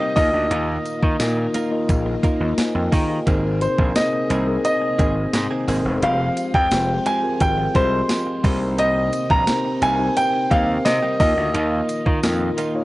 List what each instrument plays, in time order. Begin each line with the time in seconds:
Already playing: string machine C3 A#3 D#4, tine electric piano C4 D#4 G4 A#4 C5 D#5, grand piano D#5
0.00 clean electric guitar G3 A#3 D#4 G4
0.16 slap bass D#2, string machine D#3 F4, tine electric piano A#3 D#4 F4 A#4, clean electric guitar A#3 D#4 F4 A#4, grand piano D#5, kick, open hi-hat, tambourine
0.33 slap bass D2, muted clean electric guitar stroke
0.51 slap bass D#2, clean electric guitar A#3 D#4 F4 A#4, closed hi-hat
0.85 muted clean electric guitar stroke, closed hi-hat, tambourine
1.03 slap bass D#3, clean electric guitar A#3 D#4 F4 A#4, kick
1.19 slap bass A#2, tine electric piano A#3 D#4 F4 A#4 D#5, snare, closed hi-hat, tambourine
1.37 muted clean electric guitar stroke
1.54 clean electric guitar A#3 D#4 F4 A#4, closed hi-hat, tambourine
1.71 tine electric piano A#3 D#4 F4 A#4 D#5, muted clean electric guitar stroke
1.89 slap bass A#1, muted clean electric guitar stroke, kick, closed hi-hat, tambourine
2.06 muted clean electric guitar stroke
2.23 tine electric piano A#3 D#4 F4 A#4 D#5, clean electric guitar A#3 D#4 F4 A#4, kick, closed hi-hat, tambourine
2.40 slap bass D#2, muted clean electric guitar stroke
2.57 tine electric piano C5 G#5, muted slap bass stroke, muted clean electric guitar stroke, snare, closed hi-hat, tambourine
2.75 slap bass F2, tine electric piano A#4 G5, muted clean electric guitar stroke
2.92 slap bass D#3, clean electric guitar A#3 D#4 F4 A#4, tine electric piano G#4 F5, kick, open hi-hat, tambourine
3.09 tine electric piano G4 D#5, muted clean electric guitar stroke
3.26 slap bass G#1, string machine C3 G#4, clean electric guitar D#3 A#3 C4 G#4, tine electric piano C4 D#4 G#4 A#4 C5, kick, closed hi-hat, tambourine
3.61 grand piano C5, muted clean electric guitar stroke, closed hi-hat, tambourine
3.78 slap bass A#1, clean electric guitar D#3 A#3 C4 G#4, kick
3.95 tine electric piano C4 D#4 G#4 A#4 C5, grand piano D#5, snare, closed hi-hat, tambourine
4.13 muted clean electric guitar stroke
4.30 slap bass C2, clean electric guitar D#3 A#3 C4 G#4, closed hi-hat, tambourine
4.47 tine electric piano C4 D#4 G#4 A#4 D#5, muted clean electric guitar stroke
4.64 grand piano D#5, muted clean electric guitar stroke, closed hi-hat, tambourine
4.82 muted clean electric guitar stroke
4.98 slap bass G#1, clean electric guitar D#3 A#3 C4 G#4, tine electric piano C4 D#4 G#4 A#4 C5, kick, closed hi-hat, tambourine
5.16 muted clean electric guitar stroke
5.33 slap bass G#2, muted clean electric guitar stroke, snare, closed hi-hat, tambourine
5.51 clean electric guitar D#3 A#3 C4 G#4
5.67 slap bass G#1, clean electric guitar D#3 A#3 C4 G#4, tine electric piano C4 D#4 G#4 A#4 C5, open hi-hat, tambourine
5.85 slap bass E1, muted clean electric guitar stroke
6.02 slap bass F1, string machine F3 G#3 F4, clean electric guitar F3 G#3 C4 G4, tine electric piano G#3 C4 F4 G4 C5, grand piano F5, closed hi-hat
6.37 muted clean electric guitar stroke, closed hi-hat, tambourine
6.54 slap bass F2, clean electric guitar F3 G#3 C4 G4, grand piano G5, kick
6.71 slap bass F1, tine electric piano C4 F4 G4 G#4 C5, snare, closed hi-hat, tambourine
6.89 muted clean electric guitar stroke
7.06 clean electric guitar F3 G#3 C4 G4, grand piano G#5, closed hi-hat, tambourine
7.22 tine electric piano C4 F4 G4 G#4 A#4, muted clean electric guitar stroke
7.40 slap bass G#1, grand piano G5, muted clean electric guitar stroke, kick, closed hi-hat, tambourine
7.58 muted clean electric guitar stroke
7.74 slap bass C2, clean electric guitar F3 G#3 C4 G4, tine electric piano C4 F4 G4 G#4 D#5, grand piano C5, kick, closed hi-hat, tambourine
7.92 muted clean electric guitar stroke
8.09 muted clean electric guitar stroke, snare, closed hi-hat, tambourine
8.27 muted clean electric guitar stroke
8.43 slap bass C2, string machine C3 A#3 D#4, clean electric guitar G3 A#3 D#4 G4, tine electric piano C4 D#4 G4 A#4 C5, kick, open hi-hat, tambourine
8.61 muted clean electric guitar stroke
8.78 clean electric guitar G3 A#3 D#4 G4, grand piano D#5, closed hi-hat, tambourine
9.13 muted clean electric guitar stroke, closed hi-hat, tambourine
9.30 slap bass A#1, clean electric guitar G3 A#3 D#4 G4, grand piano A#5, kick
9.47 tine electric piano C4 D#4 G4 A#4 C5, snare, closed hi-hat, tambourine
9.65 muted clean electric guitar stroke
9.82 slap bass C2, clean electric guitar G3 A#3 D#4 G4, grand piano G#5, closed hi-hat, tambourine
9.99 tine electric piano C4 D#4 G4 A#4 C5, muted clean electric guitar stroke
10.16 grand piano G5, muted clean electric guitar stroke, closed hi-hat, tambourine
10.33 muted clean electric guitar stroke
10.51 slap bass D#2, clean electric guitar G3 A#3 D#4 G4, tine electric piano C4 D#4 G4 A#4 C5, grand piano F5, kick, closed hi-hat, tambourine
10.85 slap bass C3, grand piano D#5, muted clean electric guitar stroke, snare, closed hi-hat, tambourine
11.03 clean electric guitar G3 A#3 D#4 G4
11.20 slap bass D#2, clean electric guitar D#3 A#3 D#4 F4, string machine D#3 F4, tine electric piano A#3 D#4 F4 A#4, grand piano D#5, kick, open hi-hat, tambourine
11.37 slap bass D2, muted clean electric guitar stroke
11.54 slap bass D#2, clean electric guitar D#3 A#3 D#4 F4, closed hi-hat, tambourine
11.89 muted clean electric guitar stroke, closed hi-hat, tambourine
12.06 slap bass D#3, clean electric guitar D#3 A#3 D#4 F4, kick
12.23 slap bass F2, tine electric piano A#3 D#4 F4 A#4 D#5, snare, closed hi-hat, tambourine
12.40 muted clean electric guitar stroke
12.57 clean electric guitar D#3 A#3 D#4 F4, closed hi-hat, tambourine
12.74 tine electric piano A#3 D#4 F4 A#4 C#5, muted clean electric guitar stroke